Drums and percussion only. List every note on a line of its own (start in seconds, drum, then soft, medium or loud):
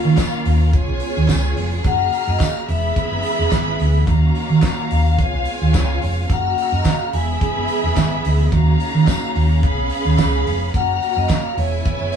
0.17 kick loud
0.17 snare loud
0.17 clap medium
0.17 closed hi-hat medium
0.17 tambourine loud
0.45 open hi-hat medium
0.73 kick loud
0.73 closed hi-hat medium
1.00 open hi-hat medium
1.28 kick loud
1.28 snare loud
1.28 clap medium
1.28 closed hi-hat medium
1.28 tambourine loud
1.57 open hi-hat medium
1.84 kick loud
1.84 closed hi-hat medium
2.12 open hi-hat medium
2.39 kick loud
2.39 snare loud
2.39 clap medium
2.39 closed hi-hat medium
2.39 tambourine loud
2.69 open hi-hat medium
2.96 kick loud
2.96 closed hi-hat medium
3.23 open hi-hat medium
3.51 kick loud
3.51 snare loud
3.51 clap medium
3.51 closed hi-hat medium
3.51 tambourine loud
3.80 open hi-hat medium
4.07 kick loud
4.07 closed hi-hat medium
4.35 open hi-hat medium
4.62 kick loud
4.62 snare loud
4.62 clap loud
4.62 closed hi-hat medium
4.62 tambourine loud
4.91 open hi-hat medium
5.19 kick loud
5.19 closed hi-hat medium
5.45 open hi-hat medium
5.74 kick loud
5.74 snare medium
5.74 clap medium
5.74 closed hi-hat medium
5.74 tambourine loud
6.02 open hi-hat medium
6.30 kick loud
6.30 closed hi-hat medium
6.58 open hi-hat medium
6.85 kick loud
6.85 snare loud
6.85 clap medium
6.85 closed hi-hat medium
6.85 tambourine loud
7.13 open hi-hat medium
7.41 kick loud
7.41 closed hi-hat medium
7.68 open hi-hat medium
7.96 kick loud
7.96 snare loud
7.96 clap medium
7.96 closed hi-hat medium
7.96 tambourine loud
8.25 open hi-hat medium
8.52 kick loud
8.52 closed hi-hat medium
8.80 open hi-hat medium
9.07 kick loud
9.07 snare loud
9.07 clap medium
9.07 closed hi-hat medium
9.07 tambourine loud
9.35 open hi-hat medium
9.63 kick loud
9.63 closed hi-hat medium
9.89 open hi-hat medium
10.18 kick loud
10.18 snare loud
10.18 clap medium
10.18 closed hi-hat medium
10.18 tambourine loud
10.47 open hi-hat medium
10.74 kick loud
10.74 closed hi-hat medium
11.02 open hi-hat medium
11.29 kick loud
11.29 snare loud
11.29 clap medium
11.29 closed hi-hat medium
11.29 tambourine loud
11.58 open hi-hat medium
11.85 kick loud
11.85 closed hi-hat medium
12.12 open hi-hat medium